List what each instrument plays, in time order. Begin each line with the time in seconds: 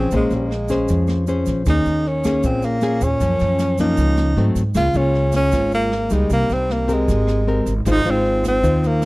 Already playing: upright bass A#1, nylon-string guitar F3, tenor saxophone C4
0.11 upright bass A#1, nylon-string guitar A#3 C#4 G#4 C5, kick, snare, shaker
0.16 tenor saxophone G#3
0.31 upright bass A#1, snare, shaker
0.35 tenor saxophone G#3
0.51 cross-stick, snare
0.68 nylon-string guitar C#4 G#4 C5, kick, snare, shaker
0.88 upright bass F2, nylon-string guitar F3, kick, snare, shaker
1.07 cross-stick, snare, shaker
1.27 nylon-string guitar C#4 G#4 C5, snare, shaker
1.46 upright bass A#1, kick, snare, shaker
1.66 upright bass D#2, nylon-string guitar D#3 A#3 C#4 G#4, tenor saxophone D#4, kick, cross-stick, snare, shaker
1.85 upright bass D#2, snare, shaker
2.06 tenor saxophone C#4, snare
2.24 nylon-string guitar A#3 C#4 G#4, kick, cross-stick, snare, shaker
2.43 upright bass A#1, nylon-string guitar A#2, tenor saxophone C4, kick, snare, shaker
2.62 tenor saxophone A#3, snare, shaker
2.81 nylon-string guitar A#3 C#4 G#4, cross-stick, snare, shaker
3.01 upright bass D#2, tenor saxophone C#4, kick, snare, shaker
3.20 upright bass F#2, nylon-string guitar F#2 F3 A#3 C#4, kick, snare, shaker
3.39 upright bass F#2, snare, shaker
3.59 cross-stick, snare, shaker
3.78 nylon-string guitar F3 A#3 C#4, tenor saxophone D#4, kick, snare, shaker
3.97 upright bass C#2, nylon-string guitar C#3, kick, snare, shaker
4.17 cross-stick, snare, shaker
4.36 upright bass G#2, nylon-string guitar F#3 A3 C4, snare
4.56 upright bass G#2, kick, snare, shaker
4.74 upright bass C#2, nylon-string guitar C#3 G#3 A#3 F4, tenor saxophone F4, kick, cross-stick, snare, shaker
4.94 upright bass C#2, nylon-string guitar G#3 A#3 F4, tenor saxophone C#4, snare, shaker
5.14 snare
5.32 tenor saxophone C#4, kick, cross-stick, snare, shaker
5.52 upright bass G#1, nylon-string guitar G#2 G#3 A#3 F4, kick, snare, shaker
5.71 tenor saxophone A#3, snare, shaker
5.92 cross-stick, snare
6.10 upright bass C#2, nylon-string guitar G3 A#3 D#4, tenor saxophone G#3, kick, snare, shaker
6.30 upright bass C2, nylon-string guitar C3, tenor saxophone A#3, kick, snare, shaker
6.50 upright bass C2, tenor saxophone C4, snare, shaker
6.70 tenor saxophone A#3, cross-stick, snare
6.88 nylon-string guitar C4 G4 A#4, kick, snare, shaker
6.93 tenor saxophone G#3
7.08 upright bass G#1, nylon-string guitar G#3, kick, snare, shaker
7.27 cross-stick, snare, shaker
7.47 nylon-string guitar C4 G4 A#4, snare
7.66 upright bass G#1, kick, snare, shaker
7.85 upright bass G#1, nylon-string guitar G#3 D#4 F4 C5, kick, cross-stick, snare, shaker
7.91 tenor saxophone D#4
8.05 upright bass G#1, nylon-string guitar D#4 F4 C5, snare, shaker
8.11 tenor saxophone C4
8.25 snare
8.44 kick, cross-stick, snare, shaker
8.48 tenor saxophone C4
8.63 upright bass D#2, nylon-string guitar D#3 D#4 F4 C5, kick, snare, shaker
8.83 snare, shaker
8.87 tenor saxophone A#3
9.02 cross-stick, snare